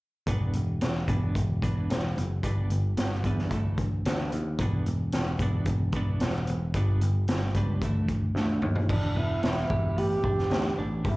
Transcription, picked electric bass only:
0.27 E1
0.55 E1
0.82 E1
1.08 E1
1.35 E1
1.90 E1
2.17 F#1
2.43 G1
2.70 G1
2.97 G1
3.24 E2
3.51 D2
4.07 D2
4.33 D#2
4.59 E1
4.86 E1
5.15 E1
5.39 E1
5.66 E1
6.22 E1
6.48 E1
6.74 G1
7.02 G1
7.29 G1
7.55 C#2
7.82 D2
8.35 D2
8.63 D#2
8.89 E1
9.15 E1
9.44 E1
9.70 E1
9.97 A1
10.24 E1
10.50 D2
10.79 A1
11.04 G1

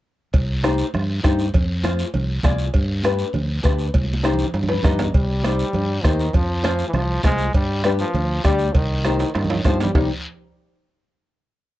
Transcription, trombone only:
5.14 G3
6.04 D#3
6.35 F3
6.88 E3
6.95 F3
7.24 G#3
7.55 G3
7.86 G3
8.00 F3
8.44 G3
8.73 D#3
9.35 D#3
9.65 F3
9.81 G3
9.95 G3

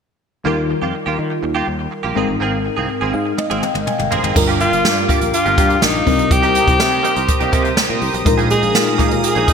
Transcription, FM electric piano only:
0.44 D#3 G3 D#4 F4 A#4
2.15 G#2 G#3 C4 D#4 A#4
3.14 F5
3.38 D#5
3.63 G5
3.87 G#5
4.11 C6
4.34 G2 G3 D4 F4 A#4
6.05 C3 G3 C4 D#4 A#4
8.25 A#2 G#3 D#4 F4 A#4

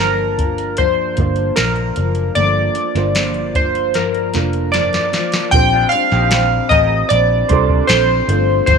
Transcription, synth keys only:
0.00 A#4
0.78 C5
1.56 A#4
2.35 D5
3.56 C5
3.95 A#4
4.72 D5
5.51 G5
5.89 F5
6.69 D#5
7.09 D5
7.87 C5
8.66 C5

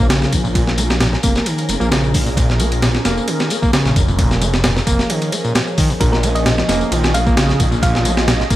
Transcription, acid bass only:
0.09 C#3
0.32 D#3
0.44 A#2
0.55 A#2
0.78 A#3
1.00 A#2
1.12 A#2
1.23 A#3
1.46 D#3
1.69 A#3
1.80 A#3
1.91 C#3
2.14 D#3
2.26 A#2
2.36 A#2
2.60 A#3
2.82 A#2
2.95 A#2
3.05 A#3
3.28 D#3
3.50 A#3
3.62 A#3
3.73 C#3
3.96 D#3
4.08 A#2
4.18 A#2
4.41 A#3
4.64 A#2
4.76 A#2
4.87 A#3
5.10 D#3
5.32 A#3
5.45 A#2
5.78 D#3
5.90 A#2
6.00 A#2
6.23 A#3
6.45 A#2
6.58 A#2
6.68 A#3
6.92 D#3
7.14 A#3
7.26 A#3
7.37 C#3
7.60 D#3
7.72 A#2
7.83 A#2
8.05 A#3
8.27 A#2
8.40 A#2
8.50 A#3

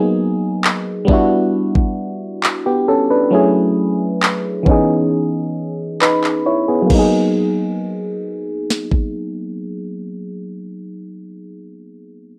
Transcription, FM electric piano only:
Already playing: F#3 A#3 B3 D#4 G#4
1.05 G3 B3
1.09 D4 E4
1.13 F#4
2.66 B3 G4
2.88 C#4 A4
3.10 D4 B4
3.31 F#3 A3 C#4 E4
3.35 G#4
4.63 E3 B3
4.67 C#4 D#4
4.71 G#4
6.01 D#4 B4 B5
6.46 E4 C#5
6.68 B3 G#4
6.82 F#3
6.86 A#3
6.91 B3
6.95 D#4
6.99 G#4

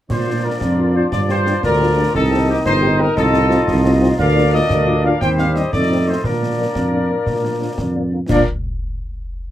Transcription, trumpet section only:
0.10 C5
0.44 A#4
0.95 C5
1.12 D5
1.30 C5
1.64 A#4
2.15 A4
2.49 G4
2.66 C5
3.00 A#4
3.16 A4
4.18 F5
4.53 D#5
5.05 F5
5.21 G5
5.38 F5
5.54 D#5
5.72 D5
6.07 C5
6.24 A#4
8.29 A#4

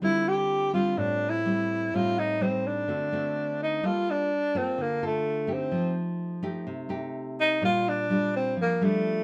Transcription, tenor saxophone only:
0.04 E4
0.28 G4
0.74 F4
0.98 D4
1.30 E4
1.95 F4
2.19 D#4
2.43 C4
2.67 D4
3.63 D#4
3.85 F4
4.10 D4
4.58 C4
4.82 A#3
5.07 A3
5.53 C4
7.40 D#4
7.65 F4
7.89 D4
8.36 C4
8.61 A#3
8.84 A3

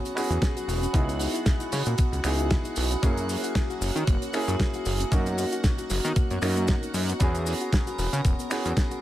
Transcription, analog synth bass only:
0.30 E2
0.68 E1
0.94 C#2
1.72 C#3
1.86 A#2
2.12 C#2
2.24 C#2
2.77 B1
3.03 F#2
3.81 F#1
3.96 D#3
4.07 F#1
4.48 F#2
4.86 F#1
5.12 F#2
5.90 F#1
6.05 D#3
6.31 F#2
6.42 F#2
6.94 F#2
7.20 E2
7.98 E1
8.13 C#3
8.25 E1
8.65 E2

